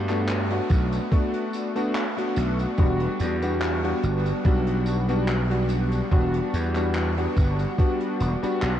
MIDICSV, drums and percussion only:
0, 0, Header, 1, 2, 480
1, 0, Start_track
1, 0, Tempo, 833333
1, 1605, Time_signature, 4, 2, 24, 8
1, 5068, End_track
2, 0, Start_track
2, 0, Title_t, "Drums"
2, 51, Note_on_c, 9, 42, 55
2, 53, Note_on_c, 9, 39, 37
2, 55, Note_on_c, 9, 54, 35
2, 109, Note_off_c, 9, 42, 0
2, 111, Note_off_c, 9, 39, 0
2, 113, Note_off_c, 9, 54, 0
2, 164, Note_on_c, 9, 42, 75
2, 164, Note_on_c, 9, 54, 28
2, 165, Note_on_c, 9, 39, 127
2, 221, Note_off_c, 9, 42, 0
2, 222, Note_off_c, 9, 39, 0
2, 222, Note_off_c, 9, 54, 0
2, 291, Note_on_c, 9, 42, 57
2, 349, Note_off_c, 9, 42, 0
2, 401, Note_on_c, 9, 42, 96
2, 404, Note_on_c, 9, 36, 115
2, 406, Note_on_c, 9, 54, 63
2, 459, Note_off_c, 9, 42, 0
2, 461, Note_off_c, 9, 36, 0
2, 464, Note_off_c, 9, 54, 0
2, 533, Note_on_c, 9, 42, 59
2, 533, Note_on_c, 9, 54, 40
2, 590, Note_off_c, 9, 54, 0
2, 591, Note_off_c, 9, 42, 0
2, 643, Note_on_c, 9, 36, 126
2, 643, Note_on_c, 9, 54, 30
2, 646, Note_on_c, 9, 42, 83
2, 700, Note_off_c, 9, 54, 0
2, 701, Note_off_c, 9, 36, 0
2, 704, Note_off_c, 9, 42, 0
2, 771, Note_on_c, 9, 42, 65
2, 828, Note_off_c, 9, 42, 0
2, 883, Note_on_c, 9, 54, 60
2, 888, Note_on_c, 9, 42, 92
2, 940, Note_off_c, 9, 54, 0
2, 945, Note_off_c, 9, 42, 0
2, 1014, Note_on_c, 9, 42, 56
2, 1015, Note_on_c, 9, 54, 35
2, 1071, Note_off_c, 9, 42, 0
2, 1073, Note_off_c, 9, 54, 0
2, 1124, Note_on_c, 9, 42, 81
2, 1124, Note_on_c, 9, 54, 26
2, 1125, Note_on_c, 9, 39, 119
2, 1181, Note_off_c, 9, 42, 0
2, 1181, Note_off_c, 9, 54, 0
2, 1182, Note_off_c, 9, 39, 0
2, 1257, Note_on_c, 9, 42, 65
2, 1315, Note_off_c, 9, 42, 0
2, 1361, Note_on_c, 9, 54, 73
2, 1366, Note_on_c, 9, 42, 110
2, 1418, Note_off_c, 9, 54, 0
2, 1423, Note_off_c, 9, 42, 0
2, 1493, Note_on_c, 9, 54, 36
2, 1494, Note_on_c, 9, 42, 57
2, 1550, Note_off_c, 9, 54, 0
2, 1552, Note_off_c, 9, 42, 0
2, 1600, Note_on_c, 9, 42, 72
2, 1600, Note_on_c, 9, 54, 25
2, 1603, Note_on_c, 9, 36, 127
2, 1657, Note_off_c, 9, 42, 0
2, 1658, Note_off_c, 9, 54, 0
2, 1661, Note_off_c, 9, 36, 0
2, 1729, Note_on_c, 9, 42, 51
2, 1787, Note_off_c, 9, 42, 0
2, 1841, Note_on_c, 9, 54, 60
2, 1844, Note_on_c, 9, 42, 101
2, 1898, Note_off_c, 9, 54, 0
2, 1901, Note_off_c, 9, 42, 0
2, 1973, Note_on_c, 9, 42, 57
2, 1973, Note_on_c, 9, 54, 38
2, 2030, Note_off_c, 9, 42, 0
2, 2031, Note_off_c, 9, 54, 0
2, 2083, Note_on_c, 9, 42, 79
2, 2084, Note_on_c, 9, 39, 120
2, 2084, Note_on_c, 9, 54, 26
2, 2141, Note_off_c, 9, 42, 0
2, 2141, Note_off_c, 9, 54, 0
2, 2142, Note_off_c, 9, 39, 0
2, 2216, Note_on_c, 9, 42, 55
2, 2274, Note_off_c, 9, 42, 0
2, 2323, Note_on_c, 9, 42, 95
2, 2325, Note_on_c, 9, 54, 60
2, 2381, Note_off_c, 9, 42, 0
2, 2383, Note_off_c, 9, 54, 0
2, 2453, Note_on_c, 9, 54, 36
2, 2454, Note_on_c, 9, 42, 62
2, 2510, Note_off_c, 9, 54, 0
2, 2512, Note_off_c, 9, 42, 0
2, 2561, Note_on_c, 9, 54, 27
2, 2563, Note_on_c, 9, 36, 127
2, 2564, Note_on_c, 9, 42, 78
2, 2619, Note_off_c, 9, 54, 0
2, 2621, Note_off_c, 9, 36, 0
2, 2622, Note_off_c, 9, 42, 0
2, 2690, Note_on_c, 9, 42, 63
2, 2747, Note_off_c, 9, 42, 0
2, 2799, Note_on_c, 9, 54, 59
2, 2805, Note_on_c, 9, 42, 86
2, 2856, Note_off_c, 9, 54, 0
2, 2862, Note_off_c, 9, 42, 0
2, 2931, Note_on_c, 9, 54, 35
2, 2932, Note_on_c, 9, 42, 59
2, 2989, Note_off_c, 9, 42, 0
2, 2989, Note_off_c, 9, 54, 0
2, 3044, Note_on_c, 9, 39, 126
2, 3045, Note_on_c, 9, 54, 25
2, 3046, Note_on_c, 9, 42, 83
2, 3102, Note_off_c, 9, 39, 0
2, 3102, Note_off_c, 9, 54, 0
2, 3103, Note_off_c, 9, 42, 0
2, 3175, Note_on_c, 9, 42, 59
2, 3233, Note_off_c, 9, 42, 0
2, 3278, Note_on_c, 9, 42, 100
2, 3284, Note_on_c, 9, 54, 67
2, 3335, Note_off_c, 9, 42, 0
2, 3341, Note_off_c, 9, 54, 0
2, 3410, Note_on_c, 9, 42, 65
2, 3414, Note_on_c, 9, 54, 39
2, 3468, Note_off_c, 9, 42, 0
2, 3472, Note_off_c, 9, 54, 0
2, 3522, Note_on_c, 9, 54, 25
2, 3524, Note_on_c, 9, 36, 127
2, 3526, Note_on_c, 9, 42, 70
2, 3580, Note_off_c, 9, 54, 0
2, 3581, Note_off_c, 9, 36, 0
2, 3583, Note_off_c, 9, 42, 0
2, 3652, Note_on_c, 9, 42, 63
2, 3710, Note_off_c, 9, 42, 0
2, 3766, Note_on_c, 9, 42, 91
2, 3766, Note_on_c, 9, 54, 59
2, 3824, Note_off_c, 9, 42, 0
2, 3824, Note_off_c, 9, 54, 0
2, 3887, Note_on_c, 9, 42, 59
2, 3891, Note_on_c, 9, 39, 36
2, 3892, Note_on_c, 9, 54, 38
2, 3945, Note_off_c, 9, 42, 0
2, 3949, Note_off_c, 9, 39, 0
2, 3950, Note_off_c, 9, 54, 0
2, 4001, Note_on_c, 9, 54, 26
2, 4003, Note_on_c, 9, 39, 124
2, 4004, Note_on_c, 9, 42, 76
2, 4059, Note_off_c, 9, 54, 0
2, 4060, Note_off_c, 9, 39, 0
2, 4061, Note_off_c, 9, 42, 0
2, 4135, Note_on_c, 9, 42, 60
2, 4193, Note_off_c, 9, 42, 0
2, 4244, Note_on_c, 9, 36, 113
2, 4244, Note_on_c, 9, 54, 60
2, 4247, Note_on_c, 9, 42, 90
2, 4301, Note_off_c, 9, 36, 0
2, 4302, Note_off_c, 9, 54, 0
2, 4305, Note_off_c, 9, 42, 0
2, 4371, Note_on_c, 9, 54, 38
2, 4375, Note_on_c, 9, 42, 54
2, 4429, Note_off_c, 9, 54, 0
2, 4432, Note_off_c, 9, 42, 0
2, 4484, Note_on_c, 9, 36, 125
2, 4486, Note_on_c, 9, 54, 26
2, 4487, Note_on_c, 9, 42, 82
2, 4542, Note_off_c, 9, 36, 0
2, 4543, Note_off_c, 9, 54, 0
2, 4544, Note_off_c, 9, 42, 0
2, 4612, Note_on_c, 9, 42, 60
2, 4670, Note_off_c, 9, 42, 0
2, 4723, Note_on_c, 9, 54, 62
2, 4726, Note_on_c, 9, 42, 87
2, 4781, Note_off_c, 9, 54, 0
2, 4784, Note_off_c, 9, 42, 0
2, 4856, Note_on_c, 9, 54, 39
2, 4857, Note_on_c, 9, 42, 53
2, 4914, Note_off_c, 9, 54, 0
2, 4915, Note_off_c, 9, 42, 0
2, 4961, Note_on_c, 9, 54, 25
2, 4965, Note_on_c, 9, 39, 119
2, 4965, Note_on_c, 9, 42, 68
2, 5019, Note_off_c, 9, 54, 0
2, 5022, Note_off_c, 9, 42, 0
2, 5023, Note_off_c, 9, 39, 0
2, 5068, End_track
0, 0, End_of_file